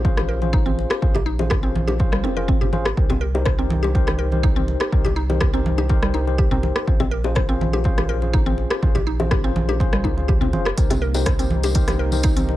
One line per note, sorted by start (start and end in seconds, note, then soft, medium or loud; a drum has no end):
0.00 0.86 A#1 medium
0.04 0.39 C#4 loud
0.04 0.39 F4 medium
0.04 0.39 G#4 medium
0.04 0.39 C5 loud
0.04 kick loud
0.04 muted conga medium
0.17 0.24 G4 medium
0.17 cross-stick medium
0.17 low bongo medium
0.17 high conga medium
0.29 0.40 A#4 medium
0.42 0.63 C#4 medium
0.42 0.63 F4 medium
0.42 0.63 G#4 medium
0.42 0.63 C5 medium
0.42 muted conga soft
0.42 high conga medium
0.53 0.65 D#4 loud
0.53 kick loud
0.53 low bongo medium
0.66 0.72 C4 medium
0.66 0.99 C#4 medium
0.66 0.99 F4 medium
0.66 0.99 G#4 medium
0.66 0.99 C5 medium
0.66 high conga medium
0.79 muted conga medium
0.90 1.01 G4 medium
0.90 cross-stick loud
1.02 2.24 A#1 loud
1.02 1.15 C#4 medium
1.02 1.15 F4 medium
1.02 1.14 G#4 medium
1.02 1.15 C5 medium
1.02 kick loud
1.15 1.26 G4 medium
1.15 high bongo loud
1.15 muted conga soft
1.15 low conga medium
1.26 1.39 D#4 medium
1.39 1.61 C#4 medium
1.39 1.61 F4 medium
1.39 1.61 G#4 medium
1.39 1.61 C5 medium
1.39 high bongo loud
1.39 high conga medium
1.50 1.62 G4 medium
1.50 kick loud
1.50 cross-stick medium
1.50 low bongo medium
1.50 low conga loud
1.63 1.70 C4 medium
1.63 1.97 C#4 medium
1.63 1.97 F4 medium
1.63 1.97 G#4 medium
1.63 1.97 C5 medium
1.63 muted conga soft
1.75 high conga loud
1.88 1.98 G4 medium
1.88 low bongo medium
1.99 2.34 C#4 medium
1.99 2.34 F4 medium
1.99 2.34 G#4 medium
1.99 2.34 C5 loud
1.99 kick loud
1.99 muted conga soft
2.12 2.23 G3 medium
2.12 cross-stick medium
2.24 2.50 F1 medium
2.24 2.36 C4 medium
2.24 low bongo medium
2.37 2.70 C#4 medium
2.37 2.70 F4 medium
2.37 2.70 G#4 medium
2.37 2.48 A#4 medium
2.37 2.70 C5 medium
2.37 muted conga soft
2.48 2.93 G#1 medium
2.48 2.60 C4 medium
2.48 kick loud
2.61 2.72 G4 medium
2.61 low conga loud
2.73 2.85 C#4 medium
2.73 2.85 F4 medium
2.73 2.85 G#4 medium
2.73 2.85 C5 loud
2.73 muted conga soft
2.73 high conga loud
2.85 2.96 G4 medium
2.85 cross-stick medium
2.97 4.76 C2 loud
2.97 3.10 D#4 medium
2.97 3.10 G4 medium
2.97 3.10 A#4 medium
2.97 3.10 C5 medium
2.97 kick loud
3.10 3.16 C4 medium
3.10 high bongo loud
3.10 muted conga soft
3.10 low conga medium
3.21 3.33 A#4 medium
3.34 3.56 D#4 medium
3.34 3.56 G4 medium
3.34 3.56 A#4 medium
3.34 3.56 C5 medium
3.34 high bongo loud
3.45 3.57 C5 medium
3.45 kick loud
3.45 cross-stick medium
3.45 low bongo medium
3.45 low conga loud
3.59 3.65 C4 medium
3.59 3.92 D#4 medium
3.59 3.92 G4 medium
3.59 3.92 A#4 medium
3.59 3.92 C5 medium
3.59 muted conga soft
3.70 high conga loud
3.83 3.93 G4 medium
3.83 low bongo medium
3.95 4.29 D#4 loud
3.95 4.29 G4 medium
3.95 4.29 A#4 medium
3.95 4.29 C5 loud
3.95 kick loud
3.95 muted conga medium
4.07 4.14 G4 medium
4.07 cross-stick medium
4.07 low bongo medium
4.07 high conga medium
4.19 4.31 A#4 medium
4.32 4.53 D#4 medium
4.32 4.54 G4 medium
4.32 4.53 A#4 medium
4.32 4.54 C5 medium
4.32 muted conga soft
4.32 high conga medium
4.43 4.55 D#4 loud
4.43 kick loud
4.43 low bongo medium
4.56 4.63 C4 medium
4.56 4.90 D#4 medium
4.56 4.90 G4 medium
4.56 4.90 A#4 medium
4.56 4.90 C5 medium
4.56 high conga medium
4.68 muted conga medium
4.80 4.91 G4 medium
4.80 cross-stick medium
4.92 6.71 C2 loud
4.92 5.05 D#4 medium
4.92 5.05 G4 medium
4.92 5.05 A#4 medium
4.92 5.05 C5 medium
4.92 kick loud
5.05 5.16 G4 medium
5.05 high bongo medium
5.05 muted conga soft
5.05 low conga medium
5.16 5.29 D#4 medium
5.29 5.51 D#4 medium
5.29 5.51 G4 medium
5.29 5.51 A#4 medium
5.29 5.51 C5 medium
5.29 high bongo medium
5.29 high conga medium
5.41 5.53 G4 medium
5.41 kick loud
5.41 cross-stick medium
5.41 low bongo medium
5.41 low conga medium
5.54 5.60 C4 medium
5.54 5.87 D#4 medium
5.54 5.87 G4 medium
5.54 5.87 A#4 medium
5.54 5.87 C5 medium
5.54 muted conga soft
5.66 high conga loud
5.78 5.89 G4 medium
5.78 low bongo medium
5.89 6.24 D#4 loud
5.89 6.24 G4 medium
5.89 6.24 A#4 medium
5.89 6.24 C5 loud
5.89 kick loud
5.89 muted conga medium
6.02 6.13 G3 medium
6.02 cross-stick medium
6.14 6.26 D#4 medium
6.14 low bongo medium
6.27 6.49 D#4 medium
6.27 6.49 G4 medium
6.27 6.49 A#4 medium
6.27 6.49 C5 medium
6.27 muted conga soft
6.38 6.50 G4 medium
6.38 kick loud
6.51 6.58 C4 medium
6.51 6.85 D#4 medium
6.51 6.85 G4 medium
6.51 6.85 A#4 medium
6.51 6.85 C5 medium
6.51 low conga loud
6.63 muted conga soft
6.63 high conga loud
6.76 6.86 G4 medium
6.76 cross-stick medium
6.87 8.66 A#1 loud
6.87 7.00 C#4 medium
6.87 7.00 F4 medium
6.87 7.00 G#4 medium
6.87 7.00 C5 medium
6.87 kick loud
7.00 7.06 C4 medium
7.00 high bongo loud
7.00 muted conga medium
7.00 low conga medium
7.11 7.23 A#4 medium
7.24 7.46 C#4 medium
7.24 7.46 F4 medium
7.24 7.46 G#4 medium
7.24 7.46 C5 medium
7.24 high bongo loud
7.35 7.48 C5 medium
7.35 kick loud
7.35 cross-stick medium
7.35 low bongo medium
7.35 low conga loud
7.49 7.55 C4 medium
7.49 7.82 C#4 medium
7.49 7.82 F4 medium
7.49 7.82 G#4 medium
7.49 7.82 C5 medium
7.49 muted conga soft
7.61 high conga loud
7.73 7.84 G4 medium
7.73 low bongo medium
7.84 8.19 C#4 loud
7.84 8.19 F4 medium
7.84 8.19 G#4 medium
7.84 8.19 C5 loud
7.84 kick loud
7.84 muted conga medium
7.98 8.04 G4 medium
7.98 cross-stick medium
7.98 low bongo medium
7.98 high conga medium
8.09 8.21 A#4 medium
8.22 8.44 C#4 medium
8.22 8.44 F4 medium
8.22 8.44 G#4 medium
8.22 8.44 C5 medium
8.22 muted conga soft
8.22 high conga medium
8.33 8.45 D#4 loud
8.33 kick loud
8.33 low bongo medium
8.46 8.53 C4 medium
8.46 8.80 C#4 medium
8.46 8.80 F4 medium
8.46 8.80 G#4 medium
8.46 8.80 C5 medium
8.46 high conga medium
8.58 muted conga soft
8.70 8.81 G4 medium
8.70 cross-stick medium
8.82 10.06 A#1 loud
8.82 8.95 C#4 medium
8.82 8.95 F4 medium
8.82 8.95 G#4 medium
8.82 8.95 C5 medium
8.82 kick loud
8.82 high conga medium
8.95 9.06 G4 medium
8.95 high bongo medium
8.95 muted conga medium
8.95 low conga medium
9.07 9.19 D#4 medium
9.20 9.41 C#4 medium
9.20 9.41 F4 medium
9.20 9.41 G#4 medium
9.20 9.41 C5 medium
9.20 high bongo loud
9.20 high conga medium
9.31 9.43 G4 medium
9.31 kick loud
9.31 cross-stick medium
9.31 low bongo medium
9.31 low conga loud
9.44 9.50 C4 medium
9.44 9.77 C#4 medium
9.44 9.77 F4 medium
9.44 9.77 G#4 medium
9.44 9.77 C5 medium
9.44 muted conga soft
9.56 high conga loud
9.69 9.79 G4 medium
9.69 low bongo medium
9.80 10.14 C#4 medium
9.80 10.14 F4 medium
9.80 10.14 G#4 medium
9.80 10.14 C5 loud
9.80 kick loud
9.80 muted conga medium
9.93 10.03 G3 medium
9.93 cross-stick medium
10.04 10.55 C#2 medium
10.04 10.17 D#4 medium
10.04 kick medium
10.04 low bongo medium
10.17 10.51 C#4 medium
10.17 10.51 F4 medium
10.17 10.51 G#4 medium
10.17 10.51 C5 medium
10.17 muted conga soft
10.28 10.40 G4 medium
10.28 kick loud
10.41 10.48 C4 medium
10.41 low conga loud
10.53 10.72 F1 loud
10.53 10.66 C#4 medium
10.53 10.66 F4 medium
10.53 10.66 G#4 medium
10.53 10.66 C5 medium
10.53 muted conga medium
10.53 high conga medium
10.65 10.76 G4 medium
10.65 cross-stick medium
10.77 12.56 C2 loud
10.77 12.57 C3 medium
10.77 12.57 A#3 medium
10.77 10.90 D#4 medium
10.77 12.57 D#4 medium
10.77 10.90 G4 medium
10.77 10.90 A#4 medium
10.77 10.90 C5 medium
10.77 kick loud
10.77 closed hi-hat medium
10.77 tambourine medium
10.90 10.97 C4 medium
10.90 closed hi-hat soft
10.90 tambourine soft
10.90 high bongo loud
10.90 muted conga medium
10.90 low conga loud
11.02 11.14 A#4 medium
11.14 11.36 D#4 medium
11.14 11.36 G4 medium
11.14 11.36 A#4 medium
11.14 11.36 C5 medium
11.14 tambourine medium
11.14 high bongo loud
11.26 11.38 C5 medium
11.26 kick loud
11.26 cross-stick medium
11.26 closed hi-hat medium
11.26 tambourine medium
11.26 low bongo medium
11.26 low conga loud
11.39 11.46 C4 medium
11.39 11.73 D#4 medium
11.39 11.73 G4 medium
11.39 11.73 A#4 medium
11.39 11.73 C5 medium
11.39 closed hi-hat soft
11.39 tambourine soft
11.39 muted conga soft
11.50 high conga loud
11.63 11.74 G4 medium
11.63 closed hi-hat soft
11.63 tambourine medium
11.63 low bongo medium
11.75 12.10 D#4 medium
11.75 12.10 G4 medium
11.75 12.10 A#4 medium
11.75 12.10 C5 loud
11.75 kick loud
11.75 closed hi-hat medium
11.75 tambourine medium
11.75 muted conga medium
11.88 11.94 G4 medium
11.88 cross-stick medium
11.88 closed hi-hat soft
11.88 tambourine soft
11.88 low bongo medium
11.88 high conga medium
11.99 12.11 A#4 medium
12.12 12.34 D#4 medium
12.12 12.34 G4 medium
12.12 12.34 A#4 medium
12.12 12.34 C5 medium
12.12 tambourine medium
12.12 muted conga soft
12.12 high conga medium
12.23 12.36 D#4 loud
12.23 kick loud
12.23 closed hi-hat medium
12.23 tambourine medium
12.23 low bongo medium
12.36 12.43 C4 medium
12.36 12.57 D#4 medium
12.36 12.57 G4 medium
12.36 12.57 A#4 medium
12.36 12.57 C5 medium
12.36 closed hi-hat soft
12.36 tambourine soft
12.36 high conga medium
12.49 muted conga medium